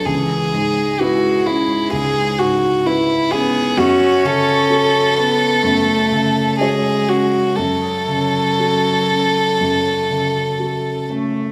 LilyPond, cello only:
\new Staff \with { instrumentName = "Cello" } { \time 4/4 \key fis \minor \tempo 4 = 63 e8 gis2~ gis8 r8 b8 | cis'4. b8 a4 gis4 | fis2. r8 a8 | }